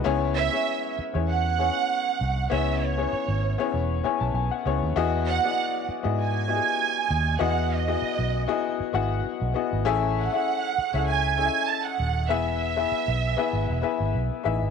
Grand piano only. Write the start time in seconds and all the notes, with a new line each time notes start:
0.04 B3 C#4 E4 G#4 C#5
0.52 B3 C#4 E4 G#4 C#5
1.13 B3 C#4 E4 G#4 C#5
1.58 B3 C#4 E4 G#4 C#5
2.50 B3 C#4 E4 G#4 C#5
2.97 B3 C#4 E4 G#4 C#5
3.58 B3 C#4 E4 G#4 C#5
4.03 B3 C#4 E4 G#4 C#5 G#5
4.20 A5
4.35 G#5
4.51 F#5
4.65 B3 C#4 E4 G#4 C#5
4.96 B3 E4 F#4 G#4 D#5
5.43 B3 E4 F#4 G#4 D5
5.51 D#5
6.03 B3 E4 F#4 G#4 D#5
6.48 B3 E4 F#4 G4 D#5
6.56 G#4
7.39 B3 E4 F#4 G#4 D#5
7.87 B3 E4 F#4 G#4 D#5
8.47 B3 E4 F#4 G#4 D#5
8.93 B3 E4 F#4 G#4 F#5
9.54 B3 E4 F#4 G#4 D#5
9.85 C#4 E4 G#4 A4 E5
10.32 C#4 E4 G#4 A4 E5
10.93 C#4 E4 G#4 A4 E5
11.37 C#4 E4 G#4 A4 D#5
11.46 E5
12.29 B3 E4 G#4 B4 E5
12.76 B3 E4 G#4 B4 E5
13.37 B3 E4 G#4 B4 E5
13.82 B3 E4 G#4 B4 E5
14.44 D#4 E4 G#4 B4 E5